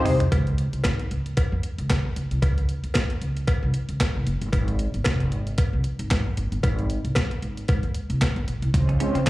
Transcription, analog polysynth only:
0.00 0.16 G#3 loud
0.00 0.16 C4 medium
0.00 0.16 D#4 medium
0.00 0.16 G4 medium
0.00 0.16 C5 loud
9.00 9.19 G#3 medium
9.00 9.19 C4 medium
9.00 9.19 C#4 medium
9.00 9.19 F4 medium
9.00 9.19 C5 medium

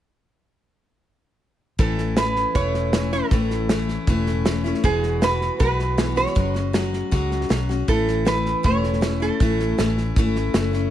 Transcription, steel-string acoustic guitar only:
1.78 2.17 A2 medium
1.78 2.16 E3 medium
1.78 2.17 A3 medium
1.78 2.17 C#4 medium
1.78 2.19 E4 medium
2.16 2.55 E3 medium
2.16 2.55 A3 medium
2.16 2.56 C#4 medium
2.16 2.57 E4 medium
2.55 2.93 A2 medium
2.55 2.93 E3 medium
2.55 2.93 A3 medium
2.55 2.94 C#4 medium
2.55 2.96 E4 medium
2.94 3.12 E3 medium
2.94 3.13 A3 medium
2.94 3.13 C#4 medium
2.94 3.11 E4 medium
3.13 3.31 A3 soft
3.13 3.32 C#4 soft
3.13 3.31 E4 soft
3.32 3.69 A2 medium
3.32 3.69 E3 medium
3.32 3.70 A3 medium
3.32 3.70 C#4 medium
3.32 3.72 E4 medium
3.69 4.08 E3 medium
3.69 4.08 A3 medium
3.69 4.08 C#4 medium
3.69 4.10 E4 medium
4.08 4.46 A2 medium
4.08 4.44 E3 medium
4.08 4.45 A3 medium
4.08 4.46 C#4 medium
4.08 4.47 E4 medium
4.45 4.64 E3 medium
4.45 4.65 A3 medium
4.45 4.65 C#4 medium
4.45 4.63 E4 medium
4.64 4.84 A3 soft
4.64 4.84 C#4 soft
4.64 4.83 E4 medium
4.83 5.21 E2 medium
4.83 5.22 B2 medium
4.83 5.20 E3 medium
4.83 5.22 G#3 medium
4.83 5.22 B3 medium
4.83 5.24 F#4 medium
5.21 5.59 E3 medium
5.21 5.61 G#3 medium
5.21 5.60 B3 medium
5.21 5.61 F#4 medium
5.59 5.98 E2 medium
5.59 5.98 B2 medium
5.59 5.96 E3 medium
5.59 5.97 G#3 medium
5.59 5.98 B3 medium
5.59 5.99 F#4 medium
5.98 6.17 E3 medium
5.98 6.17 G#3 medium
5.98 6.16 B3 medium
5.98 6.15 F#4 medium
6.16 6.35 E3 soft
6.16 6.35 G#3 soft
6.16 6.36 B3 soft
6.16 6.35 F#4 soft
6.35 6.54 F#3 medium
6.35 6.55 G#3 medium
6.35 6.55 C#4 medium
6.35 6.53 F#4 medium
6.54 6.73 G#3 soft
6.54 6.74 C#4 soft
6.54 6.74 F#4 soft
6.73 7.10 F#3 medium
6.73 7.11 G#3 medium
6.73 7.12 C#4 medium
6.73 7.12 F#4 medium
7.11 7.48 F#3 medium
7.11 7.49 G#3 medium
7.11 7.51 C#4 medium
7.11 7.51 F#4 medium
7.49 7.69 F#3 medium
7.49 7.69 G#3 medium
7.49 7.70 C#4 medium
7.49 7.68 F#4 medium
7.69 7.89 G#3 soft
7.69 7.89 C#4 soft
7.69 7.88 F#4 soft
7.88 8.26 A2 medium
7.88 8.25 E3 medium
7.88 8.25 A3 medium
7.88 8.26 C#4 medium
7.88 8.28 E4 medium
8.25 8.64 E3 medium
8.25 8.63 A3 medium
8.25 8.64 C#4 medium
8.25 8.65 E4 medium
8.63 9.02 A2 medium
8.63 9.01 E3 medium
8.63 9.01 A3 medium
8.63 9.02 C#4 medium
8.63 9.04 E4 medium
9.01 9.21 E3 medium
9.01 9.21 A3 medium
9.01 9.21 C#4 medium
9.01 9.19 E4 medium
9.20 9.40 A3 soft
9.20 9.41 C#4 soft
9.20 9.40 E4 medium
9.40 9.78 A2 medium
9.40 9.77 E3 medium
9.40 9.78 A3 medium
9.40 9.79 C#4 medium
9.40 9.81 E4 medium
9.78 10.17 E3 medium
9.78 10.17 A3 medium
9.78 10.17 C#4 medium
9.78 10.19 E4 medium
10.17 10.53 E3 medium
10.17 10.54 A3 medium
10.17 10.55 C#4 medium
10.17 10.56 E4 medium
10.54 10.73 E3 medium
10.54 10.74 A3 medium
10.54 10.74 C#4 medium
10.54 10.72 E4 medium
10.73 10.90 A3 soft
10.73 10.90 C#4 medium
10.73 10.90 E4 medium

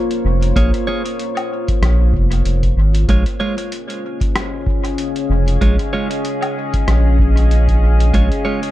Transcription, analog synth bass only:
0.25 0.53 F1 loud
0.56 0.72 A#1 medium
1.82 2.13 A#1 loud
2.14 2.42 F1 loud
2.46 2.74 F1 medium
2.77 3.05 G#1 medium
3.09 3.24 A#1 loud
5.30 5.58 F1 loud
5.62 5.77 A#1 medium
6.88 8.12 A#1 loud
8.14 8.30 A#1 loud

